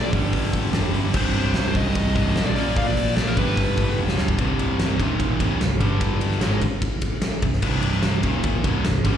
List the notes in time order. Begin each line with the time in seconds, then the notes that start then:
Already playing: A#1 A#2 F3 A#3
0.12 G1 G2 D3 G3, kick, open hi-hat
0.33 G1, kick, open hi-hat
0.54 G1, kick, open hi-hat
0.73 F1, snare, open hi-hat
0.93 G1 G2 D3 G3, open hi-hat
1.13 C1 C2 G2 C3 C5, kick, crash
1.34 C1, open hi-hat
1.46 C5
1.54 C1, snare, open hi-hat
1.75 C1 D#5, kick, open hi-hat
1.95 C1 C2 G2 C3, kick, open hi-hat
2.14 C1 C2 G2 C3 D#5, kick, snare, open hi-hat
2.36 A#1 C2 G2 C3, snare, open hi-hat
2.46 D5
2.55 A#1 A#2 F3 A#3, open hi-hat
2.76 A#1 F5, kick, open hi-hat
2.87 D5
2.96 A#1, open hi-hat
3.16 A#1 D5, snare, open hi-hat
3.28 A#4
3.36 G1 G2 D3 G3 B4, kick, open hi-hat
3.57 G1, kick, open hi-hat
3.77 G1, kick, open hi-hat
3.98 F1, high tom
4.08 snare
4.17 D1 G2 D3 G3, snare
4.28 kick
4.38 C1 C2 G2 C3, kick, ride
4.59 ride
4.80 snare, ride
4.98 D#1 D#2 A#2 D#3, kick, ride
5.20 kick, ride
5.39 C1 C2 G2 C3, kick, ride
5.60 C1 C2 G2, snare, ride
5.79 G1 G2 D3 G3, kick, ride
6.01 kick, ride
6.21 ride
6.31 snare
6.40 G#1 G#2 D#3 G#3, snare, ride
6.62 kick, ride
6.82 kick, ride
7.02 kick, ride
7.22 snare, ride
7.42 C1 C2 G2, kick, ride
7.53 snare
7.62 C1 C2 G2 C3, kick, crash
7.83 ride
7.92 snare
8.03 snare, ride
8.23 D#1 D#2 A#2 D#3, kick, ride
8.44 kick, ride
8.64 C1 C2 G2 C3, kick, ride
8.84 C1 C2 G2, snare, ride
9.04 G1 G2 D3 G3, kick, ride